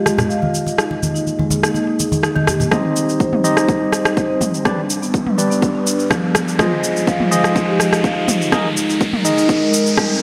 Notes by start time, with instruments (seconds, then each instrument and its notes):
Already playing: analog synth pad G#3 F4 D#5
0.06 cross-stick, muted conga, cabasa
0.18 cross-stick, low conga, cabasa
0.30 marimba F5, cabasa
0.42 marimba F4, muted conga, high conga
0.55 cabasa
0.67 muted conga, cabasa
0.78 analog synth pad A#3 G#4, marimba D#4, cross-stick, cabasa
0.91 muted conga
1.03 high conga, cabasa
1.15 marimba D#4, cabasa
1.27 muted conga, cabasa
1.39 marimba G#3, high conga
1.50 muted conga, high conga, cabasa
1.63 marimba D#4, cross-stick, cabasa
1.74 marimba D#4, muted conga, cabasa
1.87 marimba D#4
2.00 muted conga, cabasa
2.12 high conga, cabasa
2.23 marimba D#4, cross-stick, cabasa
2.36 marimba D#3, muted conga, high conga
2.47 marimba G4, cross-stick, high conga, cabasa
2.60 muted conga, low conga, cabasa
2.71 sub bass C2, analog synth pad G3 D#4 C5, marimba C4, tine electric piano D#4 G4 C5 D#5, kick, cross-stick, mid tom, riser, cabasa
2.96 cabasa
3.09 cabasa
3.20 marimba C5, kick, cabasa
3.33 marimba C4, mid tom
3.44 sub bass F2, tine electric piano D#4 G4 C5 D#5, marimba C5, cabasa
3.57 cross-stick, cabasa
3.69 kick, cabasa
3.81 marimba D#4
3.93 sub bass F2, cross-stick, cabasa
4.05 cross-stick, cabasa
4.17 marimba C5, kick, cabasa
4.30 marimba C4
4.41 kick, mid tom, cabasa
4.54 cabasa
4.65 analog synth pad D4 B4, tine electric piano D4 G4 B4 D5, kick, cross-stick, mid tom, cabasa
4.90 cabasa
5.02 sub bass G1, marimba B3, cabasa
5.14 kick, cabasa
5.26 marimba G3, mid tom
5.38 tine electric piano D4 G4 B4 D5, cabasa
5.50 marimba B3, cabasa
5.62 marimba D4, kick, cabasa
5.75 marimba D4
5.87 cabasa
6.00 cabasa
6.10 marimba F3, kick, cross-stick, cabasa
6.23 marimba B3
6.35 kick, cross-stick, cabasa
6.48 cabasa
6.59 sub bass F1, analog synth pad F3 G#3 D#4, tine electric piano F4 G#4 C5 D#5, marimba F4, kick, cross-stick, mid tom, cabasa
6.84 cabasa
6.96 cabasa
7.07 marimba F5, kick, cabasa
7.20 marimba F4, mid tom
7.31 tine electric piano F4 G#4 C5 D#5, marimba F5, cabasa
7.44 cross-stick, cabasa
7.56 kick, cabasa
7.68 marimba G4
7.80 cross-stick, cabasa
7.93 cross-stick, cabasa
8.04 marimba F5, kick, cabasa
8.16 marimba F4
8.28 kick, mid tom, cabasa
8.42 cabasa
8.52 analog synth pad G#3 A#4, marimba D#4, tine electric piano D#4 G#4 A#4 D#5, kick, cross-stick, mid tom, cabasa
8.77 cabasa
8.89 sub bass G#1, marimba D#4, cabasa
9.01 kick, cabasa
9.13 marimba G#3, mid tom
9.25 sub bass C2, tine electric piano D#4 G#4 A#4 D#5, cabasa
9.38 marimba D#4, cabasa
9.49 marimba D#4, kick, cabasa
9.62 marimba D#4
9.73 sub bass C2, cabasa
9.87 cabasa
9.97 marimba G3, kick, cross-stick, cabasa
10.11 marimba C4